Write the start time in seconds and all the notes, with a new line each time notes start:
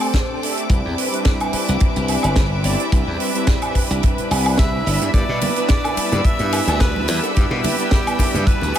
Already playing: A3 C4 D4 G4 A4 C5 D5 A5 D6
0.01 open hi-hat, high woodblock
0.14 kick, snare, closed hi-hat
0.42 A3 C4 D4 G4 E5, open hi-hat
0.57 closed hi-hat
0.69 C2 G3 C4 D4 E4 B4 E5 B5, kick, closed hi-hat
0.85 E2
0.98 open hi-hat
1.11 G3 C4 D4 E4 B4, closed hi-hat
1.25 kick, snare, closed hi-hat
1.40 closed hi-hat, high woodblock
1.53 muted slap bass stroke, open hi-hat
1.68 C2, closed hi-hat
1.80 kick, closed hi-hat
1.96 C2, closed hi-hat
2.08 open hi-hat, high woodblock
2.23 G1, closed hi-hat, high woodblock
2.36 kick, snare, closed hi-hat
2.63 G1 G3 C4 D4 E4 D5, open hi-hat
2.80 closed hi-hat
2.91 C2 G3 C4 D4 E4 B4, kick, closed hi-hat
3.07 E2
3.20 open hi-hat
3.34 G3 C4 D4 E4 B4, closed hi-hat
3.47 kick, snare, closed hi-hat
3.62 closed hi-hat, high woodblock
3.75 muted slap bass stroke, kick, open hi-hat
3.90 C2, closed hi-hat
4.03 kick, closed hi-hat
4.18 muted slap bass stroke, closed hi-hat
4.31 C2, open hi-hat, high woodblock
4.46 open hi-hat, high woodblock
4.58 E5, kick, snare, closed hi-hat
4.86 G1 G3 B3 D4 E4 D5 E5 E6, open hi-hat
5.01 G2, closed hi-hat
5.13 G2 G3 B3 D4 E4 B4 D5, kick, closed hi-hat, high bongo, cabasa
5.29 B2
5.41 open hi-hat, ride, high bongo, high conga, low conga, cabasa
5.56 G3 B3 D4 E4 B4, closed hi-hat, cabasa
5.69 D5, kick, snare, closed hi-hat, cabasa
5.84 closed hi-hat, high bongo, high woodblock
5.97 muted slap bass stroke, open hi-hat, ride, cabasa
6.12 G2, closed hi-hat, high bongo, high conga, low conga, cabasa
6.25 E5, kick, closed hi-hat, cabasa
6.39 G2, closed hi-hat
6.52 open hi-hat, ride, high bongo, cabasa, high woodblock
6.67 D2, closed hi-hat, cabasa, high woodblock
6.80 B4, kick, snare, closed hi-hat, high bongo, cabasa
6.96 high conga
7.08 E2 G3 B3 D4 E4 E5, open hi-hat, ride, cabasa
7.23 A4, closed hi-hat, high bongo, cabasa
7.35 G2 G3 B3 D4 E4 G4 B4, kick, closed hi-hat, cabasa
7.50 B2, high bongo
7.64 open hi-hat, ride, high conga, low conga, cabasa
7.78 G3 B3 D4 E4 B4, closed hi-hat, cabasa
7.91 kick, snare, closed hi-hat, high bongo, cabasa
8.07 closed hi-hat, high woodblock
8.19 muted slap bass stroke, kick, open hi-hat, ride, high bongo, cabasa
8.34 G2, closed hi-hat, high conga, low conga, cabasa
8.46 B4, kick, closed hi-hat, cabasa
8.61 D2, closed hi-hat, high bongo
8.74 ride, cabasa, high woodblock